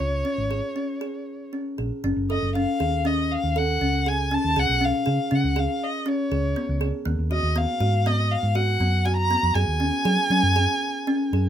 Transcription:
Already playing: C#5
0.00 C#2 F4
0.25 C#4
0.38 G#1
0.51 G#4
0.76 C#4
1.01 G#4
1.53 C#4
1.78 A#1 G#4
2.04 F#1 C#4
2.16 F#1
2.30 A4 D#5
2.42 F#1
2.55 C#4 F5
2.80 D#2 G#4
3.05 C#4 D#5
3.32 F5
3.44 D#2
3.56 A4 F#5
3.81 C#2 C#4
4.06 G#4 G#5
4.31 C#4 A5
4.45 D#2
4.56 C#2 G#4 F#5
4.69 B1
4.81 C#4 F5
5.06 C#3 G#4
5.31 C#3 C#4 F#5
5.44 C#2
5.56 G#4 F5
5.84 D#5
6.06 C#4 C#5
6.32 C#2 G#4
6.56 B3
6.69 C#2
6.81 G#4
7.05 D#2 A#3
7.19 D#2
7.31 F#4 D#5
7.43 D#2
7.56 B3 F5
7.80 G#2 F#4
8.06 B3 D#5
8.31 F5
8.43 G#2
8.55 F#4 F#5
8.80 F#2 B3
9.05 F#4 G#5
9.17 A#5
9.30 B3
9.43 F2
9.54 F#2 G#4 G#5
9.68 D#2
9.80 C#4
10.05 F#3 G#4
10.30 F#3 C#4
10.43 F#2
10.56 G#4
11.07 C#4
11.33 F#2 G#4

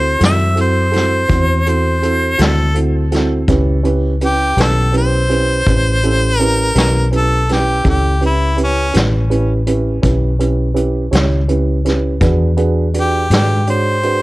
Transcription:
Already playing: D2 C4 E4 F#4 A4 C5
0.18 F#2 C4 E4 F#4 A4, closed hi-hat
0.23 E5, snare
0.55 C4 E4 F#4 A4, closed hi-hat
0.61 C5
0.91 C4 E4 F#4 A4, closed hi-hat
0.96 snare
1.28 E2 C4 E4 F#4 C5, kick, closed hi-hat
1.66 C4 E4 F#4 A4 C5, closed hi-hat
2.01 C4 E4 F#4 A4, closed hi-hat
2.38 D2 C4 E4 F#4 A4, snare, closed hi-hat
2.43 A4
2.74 C4 E4 F#4 A4, closed hi-hat
3.11 C4 E4 F#4 A4, snare, closed hi-hat
3.48 C#2 C#4 E4 G4 B4, kick, closed hi-hat
3.83 C#4 E4 G4 B4, closed hi-hat
4.21 C#4 E4 G4 B4, closed hi-hat
4.25 G4
4.57 B1 C#4 E4 G4 A4 B4, snare, closed hi-hat
4.92 C#4 E4 G4 B4, closed hi-hat
4.97 C5
5.29 C#4 E4 G4 B4, closed hi-hat
5.67 A1 C#4 E4 G4 B4, kick, closed hi-hat
6.03 C#4 E4 G4 A4, closed hi-hat
6.38 C#4 E4 G4 A#4 B4, closed hi-hat
6.75 B1 C#4 E4 G4 B4, snare, closed hi-hat
7.11 C#4 E4 G4 B4, closed hi-hat
7.16 A4
7.49 C#4 E4 G4 B4, snare, closed hi-hat
7.84 C#2 C#4 E4 G4 A4, kick, closed hi-hat
7.89 G4
8.21 C#4 E4 G4 B4, closed hi-hat
8.25 E4
8.57 C#4 E4 G4 B4, closed hi-hat
8.63 C#4
8.92 A1 C#4 E4 G4 B4, closed hi-hat
8.97 snare
9.30 C#4 E4 G4 B4, closed hi-hat
9.67 C#4 E4 G4 B4, closed hi-hat
10.02 B1 C#4 E4 G4 B4, kick, closed hi-hat
10.39 C#4 E4 G4 B4, closed hi-hat
10.74 C#4 E4 G4 B4, closed hi-hat
11.11 C#2 C#4 E4 G4 C#5, closed hi-hat
11.15 snare
11.48 C#4 E4 G4 B4, closed hi-hat
11.85 C#4 E4 G4 B4, snare, closed hi-hat
12.20 E2 D4 F#4 G#4 B4, kick, closed hi-hat
12.57 D4 F#4 G#4 B4, closed hi-hat
12.93 D4 F#4 G#4 B4, closed hi-hat
13.00 G4
13.30 G#2 D4 F#4 G#4 B4, snare, closed hi-hat
13.36 G4
13.67 D4 F#4 G#4 C5 C#5, closed hi-hat
14.03 D4 F#4 G#4 B4, closed hi-hat

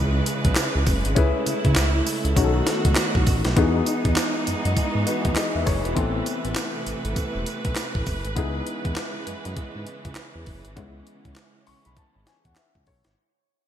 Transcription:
Already playing: C#2 C#3 E3 G#3 D#4 E4 G#4 B4
0.26 closed hi-hat, tambourine
0.45 B1, kick, closed hi-hat
0.55 snare, clap, closed hi-hat, tambourine
0.75 C#2
0.86 F#1, kick, open hi-hat, tambourine
1.05 G#1, closed hi-hat
1.15 C#2 A3 C#4 E4 G#4 B4, kick, closed hi-hat
1.47 C#3, closed hi-hat, tambourine
1.65 C#3, kick, closed hi-hat
1.75 C#2, snare, clap, closed hi-hat, tambourine
2.07 open hi-hat, tambourine
2.25 C#2, closed hi-hat
2.36 B1 D#3 B3 C#4 D#4 F#4 G#4, kick, closed hi-hat, tambourine
2.44 A4
2.67 snare, closed hi-hat, tambourine
2.85 C#2, kick, closed hi-hat
2.95 snare, clap, closed hi-hat, tambourine
3.15 B1, kick
3.27 A1, kick, open hi-hat, tambourine
3.45 B1, snare, closed hi-hat
3.56 E2 E3 G#3 B3 D#4 F#4 G#4, kick, closed hi-hat
3.86 closed hi-hat, tambourine
4.05 E2, kick, closed hi-hat
4.16 snare, clap, closed hi-hat, tambourine
4.47 F#2, closed hi-hat, tambourine
4.65 F#2, closed hi-hat
4.77 kick, closed hi-hat, tambourine
4.95 G#2
5.07 F#4 B4, closed hi-hat, tambourine
5.25 D#2, kick, closed hi-hat
5.36 G#4 D#5, snare, clap, closed hi-hat, tambourine
5.55 E2 B4 E5
5.66 F#1 G#4 C#5, kick, open hi-hat, tambourine
5.84 E1 F#4 B4, closed hi-hat
5.95 A1 C3 A3 B3 C4 E4 A4 B4, kick, closed hi-hat
6.26 closed hi-hat, tambourine
6.45 A1, closed hi-hat
6.55 snare, clap, closed hi-hat, tambourine
6.87 G#1, closed hi-hat, tambourine
7.05 G#1, closed hi-hat
7.16 kick, closed hi-hat, tambourine
7.35 E1
7.46 closed hi-hat, tambourine
7.65 B1, kick, closed hi-hat
7.76 snare, clap, closed hi-hat, tambourine
7.95 A1, kick
8.06 F#1, kick, open hi-hat, tambourine
8.25 G#1, closed hi-hat
8.36 C#2 C#3 E3 G#3 B3 D#4 E4 G#4, kick, closed hi-hat
8.67 closed hi-hat
8.85 E2, kick, closed hi-hat
8.96 snare, clap, closed hi-hat
9.27 F#2, closed hi-hat
9.45 F#2, closed hi-hat
9.57 kick, closed hi-hat
9.75 G#2
9.87 closed hi-hat
10.05 C#2, kick, closed hi-hat
10.15 snare, clap, closed hi-hat
10.35 E2
10.46 F#1, kick, open hi-hat
10.65 G#1, closed hi-hat
10.76 C#2 G#3 B3 C#4 E4, kick, closed hi-hat
11.07 closed hi-hat
11.25 C#2, kick, closed hi-hat
11.36 snare, clap, closed hi-hat
11.67 B1 C#6, open hi-hat
11.85 B1 B5, closed hi-hat
11.97 A5, kick, closed hi-hat
12.16 G#1
12.27 G#5, snare, closed hi-hat
12.45 E2 F#5, kick, closed hi-hat
12.56 E5, snare, clap, closed hi-hat
12.75 C#2, kick
12.87 B1 C#5, kick, open hi-hat
13.04 G#1, snare, closed hi-hat

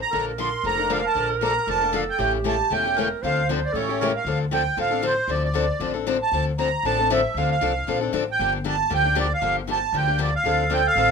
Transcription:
0.02 A#5
0.11 A#1 D3 F3 A#3 D4 A4 A#4
0.38 D3 F3 A#3 D4 A4 C6
0.63 F1 D3 F3 A#3 D4 A4 A#5
0.78 A#3 D4 A4
0.89 D3 F3 A#3 D4 A4 F5
1.06 A5
1.15 A#1 D3 F3 A#3 D4 A4
1.41 D3 F3 A#3 D4 A4 A#5
1.67 F1 D3 F3 A#3 D4 A4 A5
1.81 A#3 D4 A4
1.93 D3 F3 A#3 D4 A4 F5
2.10 G5
2.18 A1 C#3 E3 A3 C#4 G4
2.44 C#3 E3 A3 C#4 G4 A5
2.70 E1 C#3 E3 A3 C#4 G4 G5
2.86 A3 C#4 G4
2.96 C#3 E3 A3 C#4 G4 A#4
3.22 D2 D3 F3 C4 D4 A4 C5 F5
3.49 D3 F3 C4 D4 A4
3.65 D5
3.73 A1 C#3 E3 A3 C#4 G4 A4 C#5
3.89 A3 C#4 G4
4.00 C#3 E3 A3 C#4 G4 A#4
4.16 F5
4.25 D2 D3 F3 C4 D4 A4
4.51 D3 F3 C4 D4 A4 G5
4.77 A1 D3 F3 C4 D4 A4 F5
4.91 C4 D4 A4
5.02 D3 F3 C4 D4 A4 C5
5.28 D2 D3 F3 C4 D4 A4 D5
5.44 D5
5.54 D3 F3 C4 D4 A4
5.80 A1 D3 F3 C4 D4 A4
5.94 C4 D4 A4
6.06 D3 F3 C4 D4 A4
6.22 A5
6.32 D2 D3 F3 C4 D4 A4
6.58 D3 F3 C4 D4 A4 A#5
6.83 A1 D3 F3 C4 D4 A4 A5
6.99 C4 D4 A4
7.10 D3 F3 C4 D4 A4 E5
7.34 D2 D3 F3 C4 D4 A4 F5
7.51 F5
7.61 C2 D3 F3 C4 D4 A4
7.87 A#1 D3 F3 C4 D4 A4
8.01 C4 D4 A4
8.13 A1 D3 F3 C4 D4 A4
8.32 G5
8.39 G1 D3 F3 A#3 D4 G4
8.64 D3 F3 A#3 D4 G4
8.69 A5
8.90 D2 D3 F3 A#3 D4 G4
8.94 G5
9.04 A#3 D4 G4
9.15 D3 F3 A#3 D4 G4
9.20 D5
9.34 F5
9.41 G1 D3 F3 A#3 D4 G4
9.67 D3 F3 A#3 D4 G4
9.72 A5
9.93 D2 D3 F3 A#3 D4 G4
9.97 G5
10.07 A#3 D4 G4
10.18 D3 F3 A#3 D4 G4 D5
10.36 F5
10.44 D2 D3 F3 C4 D4 A4
10.70 D3 F3 C4 D4 A4 G5
10.87 F5
10.96 A1 D3 F3 C4 D4 A4

